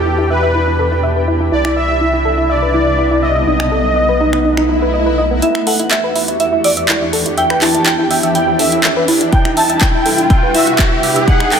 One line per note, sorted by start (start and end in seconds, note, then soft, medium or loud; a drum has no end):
0.00 1.50 E2 medium
0.00 1.48 B2 medium
0.00 1.48 E3 medium
0.00 1.48 D4 medium
0.00 3.43 E4 medium
0.00 0.32 G4 medium
0.00 1.48 G4 medium
0.06 0.14 E4 medium
0.18 0.23 E4 loud
0.30 1.24 B4 loud
0.30 0.35 E5 medium
0.43 0.48 E5 medium
0.55 0.60 E4 medium
0.67 0.72 E4 medium
0.79 0.84 A4 medium
0.92 0.99 E4 medium
1.03 1.12 E5 medium
1.16 1.24 B4 medium
1.28 1.36 E4 loud
1.40 1.48 E4 medium
1.52 3.45 C2 medium
1.52 3.45 C3 medium
1.52 3.45 G3 medium
1.52 5.38 B3 medium
1.52 3.45 D4 medium
1.52 1.61 E4 medium
1.52 1.77 D5 loud
1.65 1.69 E4 loud
1.65 finger snap medium
1.76 2.52 E5 loud
1.76 1.82 E5 medium
1.89 1.94 E5 medium
2.01 2.06 E4 medium
2.13 2.18 E4 medium
2.25 2.30 A4 medium
2.38 2.46 E4 medium
2.50 3.25 D5 loud
2.50 2.58 E5 medium
2.62 2.70 B4 medium
2.74 2.82 E4 loud
2.87 2.94 E4 medium
2.98 3.07 E4 medium
3.11 3.16 E4 medium
3.23 5.14 D#5 loud
3.23 3.28 E5 medium
3.36 3.40 E5 medium
3.47 5.40 B1 medium
3.47 5.40 A3 medium
3.47 5.40 D#4 medium
3.47 3.52 D#4 medium
3.60 3.65 D#4 medium
3.60 finger snap medium
3.72 3.77 A4 medium
3.84 3.92 D#4 medium
3.96 4.04 D#5 medium
4.09 4.16 B4 medium
4.20 4.29 D#4 loud
4.33 4.41 D#4 medium
4.33 finger snap medium
4.45 4.53 D#4 medium
4.45 swell medium
4.57 4.62 D#4 loud
4.57 finger snap medium
4.69 4.81 D#4 medium
4.82 4.90 B4 medium
4.94 5.02 D#5 medium
5.06 5.14 B4 medium
5.18 5.23 D#5 medium
5.31 5.38 B3 medium
5.42 9.29 E2 medium
5.42 9.29 E3 medium
5.42 11.24 D4 medium
5.42 5.47 E4 medium
5.42 7.36 F#4 medium
5.42 9.29 G4 medium
5.42 5.65 E5 loud
5.42 closed hi-hat medium
5.42 riser medium
5.55 5.60 E4 medium
5.55 finger snap medium
5.67 5.72 A4 medium
5.67 5.92 F#5 loud
5.67 open hi-hat loud
5.79 5.87 E4 medium
5.79 closed hi-hat medium
5.91 6.39 E5 loud
5.91 6.00 E5 medium
5.91 6.39 E5 loud
5.91 clap loud
5.91 closed hi-hat medium
6.04 6.12 B4 medium
6.16 6.24 E4 loud
6.16 open hi-hat medium
6.28 6.36 E4 medium
6.28 closed hi-hat medium
6.40 6.48 E4 medium
6.40 6.65 E5 loud
6.40 closed hi-hat medium
6.53 6.57 E4 loud
6.64 7.10 D5 medium
6.64 6.69 E5 medium
6.64 open hi-hat loud
6.77 6.82 E5 medium
6.77 closed hi-hat medium
6.89 6.94 E4 medium
6.89 clap loud
6.89 closed hi-hat medium
7.01 7.06 E4 medium
7.13 7.18 A4 medium
7.13 open hi-hat medium
7.26 7.33 E4 medium
7.26 closed hi-hat medium
7.37 11.24 E4 medium
7.37 7.46 E5 medium
7.37 7.63 G5 loud
7.37 closed hi-hat soft
7.50 7.58 B4 medium
7.50 finger snap medium
7.62 7.70 E4 loud
7.62 7.87 A5 loud
7.62 clap medium
7.62 open hi-hat loud
7.75 7.82 E4 medium
7.75 closed hi-hat medium
7.86 7.95 E4 medium
7.86 8.34 G5 loud
7.86 clap loud
7.86 closed hi-hat medium
7.99 8.04 E4 loud
8.11 8.16 E5 medium
8.11 open hi-hat medium
8.23 8.28 E5 medium
8.23 closed hi-hat medium
8.35 8.40 E4 medium
8.35 8.60 G5 loud
8.35 closed hi-hat medium
8.48 8.52 E4 medium
8.59 8.64 A4 medium
8.59 9.05 E5 medium
8.59 open hi-hat loud
8.72 8.80 E4 medium
8.72 closed hi-hat medium
8.84 8.92 E5 medium
8.84 clap loud
8.84 closed hi-hat medium
8.97 9.04 B4 medium
9.08 9.17 E4 loud
9.08 open hi-hat medium
9.21 9.29 E4 medium
9.21 closed hi-hat medium
9.33 11.26 C3 medium
9.33 11.26 G3 medium
9.33 9.41 E4 medium
9.33 11.26 B4 medium
9.33 9.44 G5 loud
9.33 kick loud
9.33 closed hi-hat soft
9.45 9.50 E4 loud
9.45 finger snap medium
9.57 9.62 E5 medium
9.57 9.82 A5 loud
9.57 open hi-hat loud
9.70 9.74 E5 medium
9.70 closed hi-hat medium
9.81 9.86 E4 medium
9.81 10.29 G5 loud
9.81 kick loud
9.81 clap loud
9.81 closed hi-hat soft
9.94 9.99 E4 medium
10.06 10.11 A4 medium
10.06 open hi-hat loud
10.18 10.26 E4 medium
10.18 closed hi-hat medium
10.30 10.39 E5 medium
10.30 10.55 G5 loud
10.30 kick loud
10.30 closed hi-hat medium
10.43 10.51 B4 medium
10.54 10.63 E4 loud
10.54 11.00 E5 medium
10.54 open hi-hat loud
10.67 10.75 E4 medium
10.67 closed hi-hat medium
10.79 10.87 E4 medium
10.79 kick loud
10.79 clap loud
10.79 closed hi-hat medium
10.92 10.96 E4 loud
11.03 11.08 E5 medium
11.03 open hi-hat medium
11.16 11.21 E5 medium
11.16 closed hi-hat medium
11.27 11.60 B2 medium
11.27 11.60 F#3 medium
11.27 11.60 A3 medium
11.27 11.60 D#4 medium
11.27 11.33 D#4 medium
11.27 11.60 B4 medium
11.27 11.50 F#5 loud
11.27 11.51 F#5 loud
11.27 kick loud
11.27 closed hi-hat soft
11.40 11.45 D#4 medium
11.40 finger snap medium
11.52 11.57 A4 medium
11.52 11.60 G5 loud
11.52 clap medium
11.52 open hi-hat loud